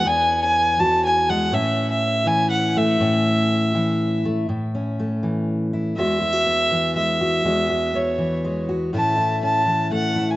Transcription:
<<
  \new Staff \with { instrumentName = "Fiddle" } { \time 3/4 \key e \major \tempo 4 = 122 gis''8. gis''8. a''8 gis''8 fis''8 | e''8. e''8. gis''8 fis''8 e''8~ | e''2~ e''8 r8 | r2. |
e''2 e''4~ | e''4 cis''4. r8 | a''4 a''4 fis''8. gis''16 | }
  \new Staff \with { instrumentName = "Steel-string acoustic guitar" } { \time 3/4 \key e \major << { b4. fis'4 gis8 | cis'4. e'4 a8 | cis'4. e'4 a8 | r8 cis'8 a4. e'8 |
<gis b fis'>8 e'16 fis'16 b4 gis8 fis'8 | <gis b fis'>8 fis'8 b4 gis8 fis'8 | <a cis' e'>8 e'8 cis'4 a8 e'8 | } \\ { e,4. e4. | a,4. e4. | a,4. e4. | a,4. e4. |
e,4. e4. | e,4. e4. | a,4. e4. | } >> }
>>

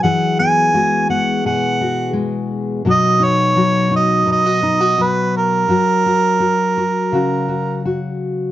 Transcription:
<<
  \new Staff \with { instrumentName = "Harmonica" } { \time 4/4 \key b \major \tempo 4 = 84 fis''8 gis''4 fis''8 fis''4 r4 | dis''8 cis''4 dis''8 dis''4 b'8 ais'8~ | ais'2. r4 | }
  \new Staff \with { instrumentName = "Steel-string acoustic guitar" } { \time 4/4 \key b \major << { gis'8 b8 fis'8 b8 gis'8 fis'4. | <fis dis' fis'>8 dis'8 fis'8 dis'8 dis'16 fis'16 dis'16 fis'4~ fis'16 | fis'8 fis'8 r8 fis'8 fis'8 fis'8 r4 | } \\ { <e fis>4 gis4 b,4 gis4 | b,4 fis4 b,4 fis4 | fis4 fis'8 r8 cis4 fis'4 | } >> }
>>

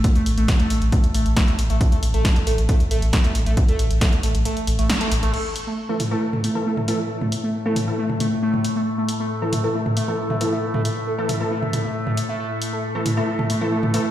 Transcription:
<<
  \new Staff \with { instrumentName = "Analog synth lead" } { \time 4/4 \key c \major \tempo 4 = 136 r16 a16 r16 a16 r16 a16 r8 a16 r16 a16 r16 a16 r8 a16 | r16 a16 r16 a16 r8 a16 r16 a16 r16 a16 r8 a16 r16 a16 | r16 a16 r8 a16 r16 a16 r16 a16 r8 a16 r16 a16 r16 a16 | a16 r8 a16 r16 a16 r16 a16 r8 a16 r16 a16 r16 a16 r16 |
r16 a16 r16 a16 r16 a16 r8 a16 r16 a16 r16 a16 r8 a16 | r16 a16 r16 a16 r8 a16 r16 a16 r16 a16 r8 a16 r16 a16 | r16 a16 r8 a16 r16 a16 r16 a16 r8 a16 r16 a16 r16 a16 | a16 r8 a16 r16 a16 r16 a16 r8 a16 r16 a16 r16 a16 r16 | }
  \new Staff \with { instrumentName = "Synth stab" } { \time 4/4 \key c \major r1 | r1 | r1 | r4 r16 <e a a'>16 r16 <e a a'>16 r8. <e a a'>8 r16 <e a a'>16 r16 |
r4 r16 <e a a'>16 r16 <e a a'>16 r2 | r4 r16 <e a a'>16 r16 <e a a'>16 r8. <e a a'>8 r16 <e a a'>16 r16 | r4 r16 <e a a'>16 r16 <e a a'>16 r2 | r4 r16 <e a a'>16 r16 <e a a'>16 r8. <e a a'>8 r16 <e a a'>16 r16 | }
  \new Staff \with { instrumentName = "Synth drone" } { \clef bass \time 4/4 \key c \major r1 | r1 | r1 | <a, a>1~ |
<a, a>1~ | <a, a>1~ | <a, a>1~ | <a, a>1 | }
  \new Staff \with { instrumentName = "Sub bass" } { \clef bass \time 4/4 \key c \major r8 a,,16 a,,16 r8 a,,16 a,,16 r8 a,,16 a,,16 r8 a,,16 a,,16 | r8 a,,16 a,,16 r8 a,,16 a,,16 r8 a,,16 a,,16 r8 a,,16 a,,16 | r8 a,,16 a,,16 r8 a,,16 a,,16 r8 a,,16 a,,16 r8 a,,16 a,,16 | r1 |
r1 | r1 | r1 | r1 | }
  \new DrumStaff \with { instrumentName = "Drums" } \drummode { \time 4/4 <hh bd>16 hh16 hho16 hh16 <hh bd sn>16 hh16 hho16 hh16 <hh bd>16 hh16 hho16 hh16 <hh bd sn>16 hh16 hho16 hh16 | <hh bd>16 hh16 hho16 hh16 <hh bd sn>16 hh16 hho16 hh16 <hh bd>16 hh16 hho16 hh16 <hh bd sn>16 hh16 hho16 hh16 | <hh bd>16 hh16 hho16 hh16 <hh bd sn>16 hh16 hho16 hh16 hh16 hh16 hho16 hh16 <hh sn>16 hh16 hho16 hh16 | cymc8 hho8 r8 <hho toml>8 r16 toml16 hho8 r16 toml16 hho8 |
r16 toml16 hho8 r8 <hho toml>8 r16 toml16 <hho toml>8 r16 toml16 hho8 | r8 hho8 r8 <hho toml>8 r16 toml16 hho8 r16 toml16 hho8 | r16 toml16 hho8 r8 <hho toml>8 r16 toml16 <hho toml>8 r16 toml16 hho8 | r8 hho8 r8 <hho toml>8 r16 toml16 hho8 r16 toml16 hho8 | }
>>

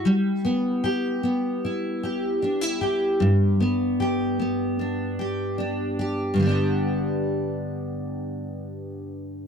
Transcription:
\new Staff \with { instrumentName = "Steel-string acoustic guitar" } { \time 4/4 \key g \major \tempo 4 = 76 g8 b8 g'8 b8 e'8 g'8 d'16 e'16 g'8 | g,8 b8 g'8 b8 d'8 g'8 d'8 g'8 | <g, d g b d' g'>1 | }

